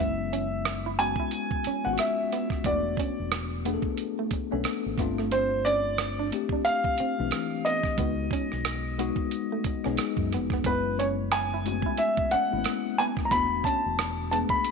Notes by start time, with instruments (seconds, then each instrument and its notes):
Already playing: grand piano E5
0.00 fingered electric bass F#1, tine electric piano G#3 B3 C#4 E4, clean electric guitar B3
0.33 clean electric guitar C#4, closed hi-hat
0.65 cross-stick, closed hi-hat
0.86 clean electric guitar E4
0.99 tine electric piano G#3 B3 C#4 F#4, grand piano G#5, muted clean electric guitar stroke, closed hi-hat
1.16 clean electric guitar E4, kick
1.31 closed hi-hat
1.51 kick
1.64 clean electric guitar C#4, muted fingered electric bass stroke, closed hi-hat
1.84 fingered electric bass G#1, tine electric piano G#3 B3 C#4 F4, grand piano F#5
1.93 tine electric piano F#4
1.98 grand piano E5, cross-stick, closed hi-hat
2.32 clean electric guitar B3, cross-stick, closed hi-hat
2.50 kick, cross-stick
2.64 fingered electric bass E1, tine electric piano G#3 B3 D4 F#4, clean electric guitar B3, grand piano D5, kick, closed hi-hat
2.71 tine electric piano A3
2.97 clean electric guitar C#4, kick, closed hi-hat
3.19 fingered electric bass E1
3.32 cross-stick, closed hi-hat
3.65 tine electric piano A3 B3 D4 G#4, clean electric guitar B3, closed hi-hat
3.74 tine electric piano A4
3.82 kick
3.97 closed hi-hat
4.19 clean electric guitar A3
4.31 muted fingered electric bass stroke, muted clean electric guitar stroke, kick, closed hi-hat
4.51 fingered electric bass B1, tine electric piano A3 B3 D4 A4, clean electric guitar C#4
4.64 muted clean electric guitar stroke, cross-stick, closed hi-hat
4.86 fingered electric bass G#1
4.98 fingered electric bass G1, tine electric piano A3 C4 D4 F4, clean electric guitar B3, kick, cross-stick, closed hi-hat
5.18 clean electric guitar A3, cross-stick
5.32 clean electric guitar C4, grand piano C5, closed hi-hat
5.65 clean electric guitar C#4, grand piano D5, closed hi-hat
5.98 cross-stick, closed hi-hat
6.19 clean electric guitar D4
6.32 tine electric piano A3 C4 D4 G4, muted clean electric guitar stroke, closed hi-hat
6.49 clean electric guitar D4, kick
6.65 grand piano F5, closed hi-hat
6.84 kick
6.98 clean electric guitar C4, muted fingered electric bass stroke, closed hi-hat
7.18 fingered electric bass B1, tine electric piano E3 A3 C4 D4
7.31 cross-stick, closed hi-hat
7.65 clean electric guitar B3, grand piano D#5, cross-stick, closed hi-hat
7.83 kick, cross-stick
7.98 fingered electric bass C#2, tine electric piano G#3 B3 D#4 F#4, clean electric guitar B3, kick, closed hi-hat
8.31 clean electric guitar C#4, kick, closed hi-hat
8.52 fingered electric bass B1, cross-stick
8.65 cross-stick, closed hi-hat
8.98 tine electric piano G#3 B3 D#4 F#4, clean electric guitar B3, closed hi-hat
9.16 kick
9.31 closed hi-hat
9.52 clean electric guitar A3
9.64 muted fingered electric bass stroke, muted clean electric guitar stroke, kick, closed hi-hat
9.84 fingered electric bass B1, tine electric piano G#3 B3 D#4 G#4, clean electric guitar C#4, cross-stick
9.97 muted clean electric guitar stroke, cross-stick, closed hi-hat
10.17 fingered electric bass F#2, kick
10.32 fingered electric bass F1, clean electric guitar B3, cross-stick, closed hi-hat
10.50 clean electric guitar B3, kick, cross-stick
10.64 fingered electric bass F#1, tine electric piano G#3 B3 C#4 E4, clean electric guitar B3, grand piano B4, kick, closed hi-hat
10.99 clean electric guitar C#4, grand piano C#5, closed hi-hat
11.32 grand piano G#5, cross-stick, closed hi-hat
11.54 clean electric guitar E4
11.65 tine electric piano G#3 A3 C#4 F#4, muted clean electric guitar stroke, closed hi-hat
11.72 tine electric piano B3
11.82 clean electric guitar E4, kick
11.97 grand piano E5, closed hi-hat
12.17 kick
12.31 clean electric guitar C#4, grand piano F#5, muted fingered electric bass stroke, closed hi-hat
12.51 fingered electric bass G#1, tine electric piano G#3 A#3 C#4 E4
12.58 tine electric piano B3
12.64 cross-stick, closed hi-hat
12.98 clean electric guitar B3, grand piano G#5, cross-stick, closed hi-hat
13.17 kick, cross-stick
13.25 grand piano A#5
13.31 fingered electric bass E1, tine electric piano A3 B3 D4 F#4, clean electric guitar B3, grand piano B5, kick, closed hi-hat
13.64 clean electric guitar C#4, grand piano A5, kick, closed hi-hat
13.86 fingered electric bass E1
13.99 cross-stick, closed hi-hat
14.31 tine electric piano G#3 B3 D4 G#4, clean electric guitar B3, grand piano A5, closed hi-hat
14.38 tine electric piano A3
14.49 grand piano B5, kick
14.64 closed hi-hat